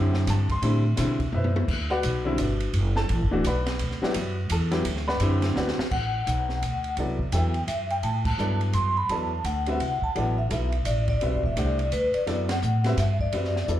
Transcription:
Already playing: F#2 D3 C4 E4 G4 F#5
0.14 snare
0.27 G2 A5, snare, hi-hat pedal, ride
0.49 C6, kick, ride
0.62 A2 D3 G3 C4 E4, ride
0.96 B2 D3 G3 C4 E4, snare, hi-hat pedal, ride
1.19 kick, ride
1.32 F#2 E4 B4 C5 E5, high tom
1.44 high tom
1.56 high tom
1.68 D2, kick, crash
1.90 F#4 B4 D5 F#5
2.03 B1, hi-hat pedal, ride
2.25 D3 G3 C4 E4
2.38 G1 D4 F#4 B4 D5, hi-hat pedal, ride
2.60 ride
2.73 F#1, ride
2.96 A4 A5, snare
3.09 A1, ride
3.21 F#1
3.31 D1 E3 A3 D4 F#4
3.44 B1 B4 D5 F#5 B5, hi-hat pedal, ride
3.66 snare, ride
3.79 D2, ride
3.91 snare
4.02 F#3 B3 E4 F#4 G4 B4 D5 F#5, muted upright bass stroke, snare
4.14 F#2, hi-hat pedal, ride
4.50 E2 A4 A5, hi-hat pedal, ride
4.71 F#3 B3 E4 G4, snare, ride
4.85 D2, ride
4.96 snare
5.08 B4 D5 F#5 B5, snare
5.20 F#2 D3 C4 E4 G4, hi-hat pedal, ride
5.42 snare, ride
5.56 D2 F#4 B4 D5 F#5, snare
5.68 snare
5.78 muted upright bass stroke, snare
5.91 A1 F#5, kick, crash
6.27 B1 F#5, hi-hat pedal, ride
6.49 snare
6.62 D2, hi-hat pedal, ride
6.84 ride
6.97 C2 F#3 B3 E4 A4 D5, ride
7.19 kick
7.32 E2 F#3 B3 E4 A4 E5 G5, hi-hat pedal, ride
7.54 ride
7.67 F#2 E5, hi-hat pedal, ride
7.90 G5, ride
8.03 A2 A5, ride
8.25 A5, kick, crash
8.38 G2 F#3 B3 E4 A4 D5, hi-hat pedal
8.61 ride
8.73 F#2 C6, hi-hat pedal, ride
8.97 B5
9.09 E2 F#3 B3 E4 A4 D5 A5, ride
9.44 D2 F#5, hi-hat pedal, ride
9.66 G3 C4 F#4 B4 E5, ride
9.80 C2 F#5, ride
10.02 A5, muted upright bass stroke, kick
10.15 A1 F#3 B3 E4 A4 D5 F#5, ride
10.38 E5
10.49 B1 F#3 B3 E4 A4 E5, hi-hat pedal, ride
10.72 ride
10.85 A1 D5, hi-hat pedal, ride
11.08 D5, kick, ride
11.21 B1 G3 C4 F#4 B4 E5, ride
11.33 F#1
11.44 D1 E5, kick
11.56 C2 A3 D4 G4 C5 D5 F#5, hi-hat pedal, ride
11.79 ride
11.92 D2 B4, hi-hat pedal, ride
12.14 D5, muted upright bass stroke, ride
12.26 F#2 F#3 B3 E4 A4 D5, snare, ride
12.49 F#5, snare, ride
12.62 A2, hi-hat pedal
12.84 G3 C4 F#4 B4 E5, snare, ride
12.97 G2 E5, snare, hi-hat pedal, ride
13.20 D5, kick
13.32 F#2 G3 C4 F#4 B4 E5, ride
13.44 snare
13.56 snare
13.68 E2 F#3 B3 E4 A4 D5, hi-hat pedal

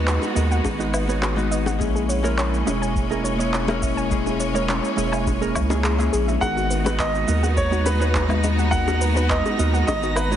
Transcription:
Already playing: D#2 G#3 B3 D#4 F#4 B4
0.07 B4, clap, shaker
0.22 high bongo, shaker
0.35 D#2 G#3 B3 D#4 F#4 A#4 D#5, shaker
0.51 F#5, shaker
0.64 G#1, kick, high bongo, shaker
0.78 G#3 B3 D#4 F#4 B4, shaker
0.94 B4, low woodblock, shaker
1.07 G#3 B3 D#4 F#4 B4 C#5, shaker
1.22 B4, clap, high bongo, shaker
1.36 G#3 B3 D#4 F#4 B4, shaker
1.51 D#5, shaker
1.66 F#5, high bongo, shaker
1.79 A#1 G#3 A#3 C#4 E4 G#4, kick, shaker
1.95 G#4, shaker
2.09 C#5, shaker
2.23 G#3 A#3 C#4 E4 A#4 C#5, high bongo, shaker
2.38 C#5, clap, shaker
2.54 shaker
2.65 E1 G#3 A#3 C#4 E4 G#4 E5, high bongo, shaker
2.82 G#5, shaker
2.95 kick, shaker
3.09 G#3 A#3 C#4 E4 G#4 A#4, shaker
3.24 C#5, high bongo, shaker
3.38 G#3 A#3 C#4 E4 C#5, shaker
3.53 C#5, clap, shaker
3.67 G#3 A#3 C#4 E4 A#4, high bongo, low woodblock, shaker
3.82 E5, kick, shaker
3.97 G#5, shaker
4.10 G#3 A#3 C#4 E4 G#4, kick, shaker
4.26 G#4, high bongo, shaker
4.40 C#5, shaker
4.54 G#3 A#3 C#4 E4 A#4 C#5, shaker
4.69 C#5, clap, high bongo, shaker
4.85 shaker
4.96 E1 G#3 A#3 C#4 E4 G#4 E5, shaker
5.12 G#5, low woodblock, shaker
5.26 kick, high bongo, shaker
5.40 G#3 A#3 C#4 E4 G#4 A#4, shaker
5.55 C#2 C#6, kick, low woodblock, shaker
5.69 G#3 A#3 C#4 E4 G#4, high bongo, shaker
5.84 G#4, clap, shaker
5.98 G#3 A#3 C#4 E4 G#4 E5, shaker
6.13 A#1 G#4, shaker
6.28 E5, high bongo, shaker
6.41 G#1 G#3 B3 D#4 F#4 A#4 F#5 A#5 A#6, kick, high bongo, shaker
6.56 F#4, shaker
6.70 B4, shaker
6.84 G#3 B3 D#4 F#4 B4, high bongo, shaker
6.99 B4 D#5, kick, clap, shaker
7.15 shaker
7.27 D#2 G#3 B3 D#4 F#4 A#4 D#5, shaker
7.43 F#5, high bongo, shaker
7.57 C#5, kick, shaker
7.71 G#3 B3 D#4 F#4 B4, shaker
7.86 B4, high bongo, shaker
7.99 G#3 B3 D#4 F#4 B4 C#5, shaker
8.15 B4, kick, clap, shaker
8.28 G#3 B3 D#4 F#4 B4, low woodblock, shaker
8.44 D#5, high bongo, shaker
8.59 F#5, shaker
8.71 G#3 B3 D#4 F#4 A#4 F#5, kick, shaker
8.88 F#4, high bongo, shaker
9.01 B4, shaker
9.15 G#3 B3 D#4 F#4 B4, shaker
9.29 B4 D#5, kick, clap, shaker
9.46 high bongo, shaker
9.57 D#2 G#3 B3 D#4 F#4 A#4 D#5, shaker
9.74 F#5, shaker
9.87 G#1 D#5, kick, high bongo, shaker
10.02 G#3 B3 D#4 F#4 B4, shaker
10.16 B4, low woodblock, shaker
10.30 G#3 B3 D#4 F#4 B4 C#5, shaker

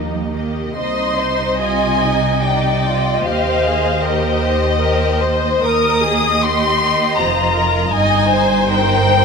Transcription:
Already playing: D#2 F3 A#3 D#4 G4 D#5
0.32 D#3 A#3 G4 D#5
0.76 C2 C3 D#4 C5 D#5 C6
1.18 C5 D#5
1.59 F4 D#5 G#5
2.03 D#4
2.43 D#4 D5 D#5 G5
2.87 F4
3.23 D#2 G4 C5 F5
3.64 G#4
4.01 G4 A#4 C5 D#5
4.42 C5
4.80 G4 A#4 C5
5.22 C5
5.63 D#2 A#4 D#5 D#6
6.02 G#4
6.40 G4 C6
7.16 F1 F2 F4 C5 A#5
7.55 A#4
7.91 G1 G2 D#5 G#5
7.95 D#4
8.30 C5
8.69 D#4 A#4 G5

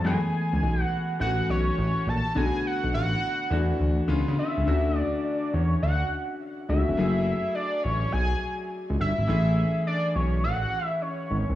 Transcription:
0.04 F#2 E3 G#3 B3 G#4 G#5
0.11 A3
0.53 C#2
0.63 B1
0.83 F#5
1.19 A1 E3 A3 C#4 F#4 F#5
1.49 B1 C#5
1.78 A1
2.07 A#1 A5
2.35 B1 D3 A3 B3 F#4 G#5
2.67 F#5
2.84 B1
2.94 A1 F#5
3.50 E2 E3 A3 D4 F#4
3.80 D2
4.08 C#2 D3 B3 C#4 F4
4.28 C#3
4.39 E5
4.57 C#2
4.65 D2 D3 A3 C#4 F#4
4.98 D5
5.25 D5
5.54 E2 C#5
5.82 D2 F#5
6.69 C#2 D3 A3 C#4 F#4 E5
6.89 F1
6.97 F#1 F#3 A3 E4 G#4
7.55 D5
7.83 A1 C#5
8.12 B1 G#5
8.90 C#2
9.00 G1 E5
9.19 G#1
9.27 A1 E3 A3 C#4 G#4
9.87 D5
10.15 B1 C#5
10.44 A1 F#5
10.86 E5
11.02 C#5
11.31 G#1
11.49 C2

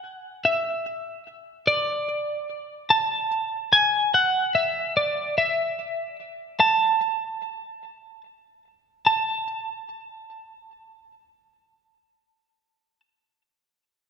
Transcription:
Already playing: F#5
0.45 E5
1.67 D5
2.90 A5
3.73 G#5
4.14 F#5
4.55 E5
4.97 D5
5.38 E5
6.60 A5
9.07 A5

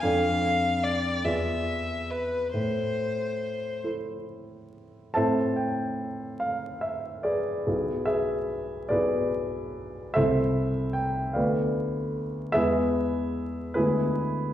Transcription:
0.03 F2 D4 A4 D5 F5
0.83 D5
1.24 E2 F4 G#4 D5 E5
2.10 B4
2.54 A2 C5
3.84 E4 A4 C5
5.14 A2 C4 E4 A4 C5 E5 A5
5.56 G5
6.40 F5
6.81 E5
7.23 G#4 B4 D5
7.67 B1 B3 E4 G#4
8.05 G#4 B4 E5
8.89 B1 B3 E4 G#4 B4 D5
10.14 C2 A3 E4 A4 C5 E5
10.93 G5
11.33 D2 A3 B3 B4 D5 F5
12.52 E2 G#3 B3 E4 G#4 B4 E5
13.74 D2 G#3 B3 E4 G#4 B4

